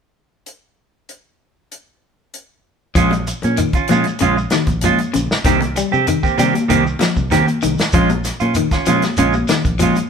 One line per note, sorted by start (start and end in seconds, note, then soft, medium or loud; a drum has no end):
0.46 closed hi-hat soft
1.09 closed hi-hat soft
1.72 closed hi-hat soft
2.34 closed hi-hat soft
2.95 3.33 A#1 medium
2.95 3.15 F3 medium
2.95 3.13 G#3 medium
2.95 3.12 C#4 medium
2.95 3.12 F4 medium
2.95 kick medium
2.95 closed hi-hat medium
2.95 shekere medium
3.11 muted clean electric guitar stroke soft
3.11 closed hi-hat soft
3.11 high conga medium
3.11 shekere soft
3.27 muted clean electric guitar stroke soft
3.27 closed hi-hat soft
3.27 shekere medium
3.42 3.68 A#2 medium
3.42 3.59 C#4 soft
3.42 closed hi-hat soft
3.42 low conga medium
3.42 shekere soft
3.57 3.78 D#3 medium
3.57 muted clean electric guitar stroke soft
3.57 closed hi-hat medium
3.57 shekere medium
3.73 3.90 C#4 soft
3.73 3.90 F4 soft
3.73 kick medium
3.73 closed hi-hat soft
3.73 shekere soft
3.88 4.03 A#2 medium
3.88 4.09 F3 medium
3.88 4.06 G#3 medium
3.88 4.06 C#4 medium
3.88 closed hi-hat soft
3.88 high conga medium
3.88 low conga medium
3.88 shekere medium
3.92 4.06 F4 medium
4.04 muted clean electric guitar stroke soft
4.04 closed hi-hat soft
4.04 shekere soft
4.19 4.46 A#1 medium
4.19 4.40 C#3 medium
4.19 4.37 G#3 medium
4.19 4.37 C#4 medium
4.19 4.36 F4 medium
4.19 closed hi-hat medium
4.19 shekere medium
4.37 muted clean electric guitar stroke soft
4.37 shekere soft
4.50 4.72 D#3 medium
4.50 muted clean electric guitar stroke soft
4.50 snare medium
4.50 closed hi-hat soft
4.50 high conga medium
4.50 shekere medium
4.67 4.92 A#1 medium
4.67 kick medium
4.67 closed hi-hat soft
4.67 shekere soft
4.81 5.03 F3 medium
4.81 5.00 G#3 medium
4.81 4.99 C#4 medium
4.81 closed hi-hat medium
4.81 high conga medium
4.81 shekere medium
4.85 4.99 F4 medium
4.98 muted clean electric guitar stroke soft
4.98 closed hi-hat soft
4.98 shekere soft
5.14 5.28 A#1 medium
5.14 5.33 C#3 medium
5.14 muted clean electric guitar stroke soft
5.14 closed hi-hat soft
5.14 low conga medium
5.14 shekere medium
5.31 snare medium
5.31 shekere soft
5.44 5.82 C2 medium
5.44 5.62 D#3 medium
5.44 5.65 D#3 medium
5.44 5.61 A#3 medium
5.44 5.60 C4 medium
5.44 5.60 G4 medium
5.44 kick medium
5.44 snare soft
5.44 closed hi-hat medium
5.44 shekere medium
5.61 muted clean electric guitar stroke soft
5.61 closed hi-hat soft
5.61 high conga medium
5.61 shekere soft
5.76 5.97 G3 medium
5.76 muted clean electric guitar stroke soft
5.76 closed hi-hat soft
5.76 shekere medium
5.91 6.17 C3 medium
5.91 6.06 C4 medium
5.91 6.07 G4 medium
5.91 low conga medium
5.91 shekere soft
6.07 6.28 D#3 medium
6.07 muted clean electric guitar stroke soft
6.07 closed hi-hat medium
6.07 shekere medium
6.23 6.37 A#3 soft
6.23 6.37 C4 soft
6.23 6.38 G4 soft
6.23 kick medium
6.23 shekere soft
6.38 6.52 C3 medium
6.38 6.55 D#3 medium
6.38 6.59 G3 medium
6.38 6.54 A#3 medium
6.38 6.54 C4 medium
6.38 6.54 G4 medium
6.38 closed hi-hat soft
6.38 high conga medium
6.38 low conga medium
6.38 shekere medium
6.53 muted clean electric guitar stroke soft
6.53 closed hi-hat soft
6.53 high conga medium
6.53 shekere soft
6.68 6.94 C2 loud
6.68 6.86 D#3 medium
6.68 6.90 D#3 medium
6.68 6.84 A#3 medium
6.68 6.84 C4 medium
6.68 6.84 G4 medium
6.68 closed hi-hat medium
6.68 shekere medium
6.85 muted clean electric guitar stroke soft
6.85 shekere soft
6.99 7.21 F3 medium
6.99 muted clean electric guitar stroke soft
6.99 snare medium
6.99 closed hi-hat soft
6.99 high conga medium
6.99 shekere medium
7.17 7.41 C2 medium
7.17 kick medium
7.17 shekere soft
7.31 7.48 D#3 medium
7.31 7.52 D#3 medium
7.31 7.47 A#3 medium
7.31 7.47 C4 medium
7.31 7.46 G4 medium
7.31 snare soft
7.31 closed hi-hat medium
7.31 high conga medium
7.31 shekere medium
7.47 muted clean electric guitar stroke soft
7.47 closed hi-hat soft
7.47 shekere soft
7.62 7.77 C2 medium
7.62 7.83 D#3 medium
7.62 muted clean electric guitar stroke soft
7.62 closed hi-hat soft
7.62 low conga medium
7.62 shekere medium
7.78 snare medium
7.78 closed hi-hat soft
7.78 shekere soft
7.92 8.31 A#1 medium
7.92 8.14 F3 medium
7.92 8.10 G#3 medium
7.92 8.10 C#4 medium
7.92 8.09 F4 medium
7.92 kick medium
7.92 closed hi-hat medium
7.92 shekere medium
8.09 muted clean electric guitar stroke soft
8.09 closed hi-hat soft
8.09 high conga medium
8.09 shekere soft
8.24 muted clean electric guitar stroke soft
8.24 snare soft
8.24 closed hi-hat medium
8.24 shekere medium
8.40 8.66 A#2 medium
8.40 8.55 C#4 soft
8.40 8.55 F4 medium
8.40 closed hi-hat soft
8.40 low conga medium
8.40 shekere soft
8.54 8.76 D#3 medium
8.54 muted clean electric guitar stroke soft
8.54 closed hi-hat medium
8.54 shekere medium
8.71 8.87 C#4 soft
8.71 8.87 F4 soft
8.71 kick medium
8.71 snare soft
8.71 closed hi-hat soft
8.71 shekere soft
8.86 9.01 A#2 medium
8.86 9.07 F3 medium
8.86 9.04 G#3 medium
8.86 9.04 C#4 medium
8.86 9.03 F4 medium
8.86 closed hi-hat medium
8.86 high conga medium
8.86 low conga medium
8.86 shekere medium
9.02 muted clean electric guitar stroke soft
9.02 snare soft
9.02 closed hi-hat soft
9.02 high conga medium
9.02 shekere soft
9.17 9.43 A#1 loud
9.17 9.38 C#3 medium
9.17 9.35 G#3 medium
9.17 9.34 C#4 medium
9.17 9.34 F4 medium
9.17 closed hi-hat medium
9.17 shekere medium
9.33 muted clean electric guitar stroke soft
9.33 high conga medium
9.33 shekere soft
9.48 9.69 D#3 medium
9.48 muted clean electric guitar stroke soft
9.48 snare medium
9.48 closed hi-hat soft
9.48 high conga medium
9.48 shekere medium
9.64 9.90 A#1 medium
9.64 kick medium
9.64 closed hi-hat soft
9.64 shekere soft
9.79 10.00 F3 medium
9.79 9.98 G#3 medium
9.79 9.97 C#4 medium
9.79 9.97 F4 medium
9.79 closed hi-hat medium
9.79 high conga medium
9.79 shekere medium
9.95 muted clean electric guitar stroke soft
9.95 closed hi-hat soft
9.95 shekere soft